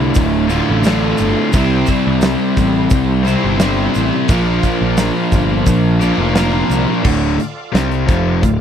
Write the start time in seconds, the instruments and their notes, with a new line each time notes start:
Already playing: picked electric bass C2, overdriven electric guitar D2 A2 D3 A3 F4, tonewheel organ F4 A4 D5 F5
0.15 picked electric bass D1, kick, open hi-hat, shaker
0.50 overdriven electric guitar D2 A2 D3 A3 F4, open hi-hat, shaker
0.70 picked electric bass A1
0.84 overdriven electric guitar D2 A2 D3 A3 F4, snare, open hi-hat, shaker
1.18 picked electric bass G1, open hi-hat, shaker
1.53 picked electric bass C2, overdriven electric guitar C3 G3 C4 E4 G4 C5, tonewheel organ E4 G4 C5 E5, kick, open hi-hat, shaker
1.86 kick, open hi-hat, shaker
2.07 picked electric bass C2
2.21 snare, open hi-hat, shaker
2.57 picked electric bass A1, kick, snare, open hi-hat, shaker
2.90 picked electric bass C2, kick, open hi-hat, shaker
3.23 overdriven electric guitar C4 G4 C5, open hi-hat
3.27 overdriven electric guitar C3 G3 C4 E4, shaker
3.44 picked electric bass G1
3.60 overdriven electric guitar C3 G3 C4 E4 G4 C5, snare, open hi-hat, shaker
3.94 picked electric bass A1, open hi-hat, shaker
4.28 picked electric bass A#1, overdriven electric guitar A#2 F3 A#3 D4 F4 A#4, tonewheel organ F4 A#4 D5 F5, kick, open hi-hat, shaker
4.63 kick, open hi-hat, shaker
4.81 picked electric bass A#1
4.98 snare, open hi-hat, shaker
5.32 picked electric bass G1, kick, open hi-hat, shaker
5.66 picked electric bass A#1, kick, open hi-hat, shaker
6.01 overdriven electric guitar A#2 F3 A#3 D4 F4 A#4, open hi-hat, shaker
6.18 picked electric bass F1
6.35 overdriven electric guitar A#2 F3 A#3 D4 F4 A#4, snare, open hi-hat, shaker
6.70 picked electric bass C2, open hi-hat, shaker
7.04 picked electric bass D1, overdriven electric guitar D2 A2 D3, tonewheel organ F4 A4 D5 F5, kick, crash
7.40 muted picked electric bass stroke, muted overdriven electric guitar stroke, closed hi-hat
7.74 picked electric bass C2, overdriven electric guitar C3 G3 C4, snare, closed hi-hat
7.92 closed hi-hat
8.09 picked electric bass F1, overdriven electric guitar F2 C3 F3, kick, closed hi-hat
8.43 picked electric bass D1, overdriven electric guitar D2 A2, kick, closed hi-hat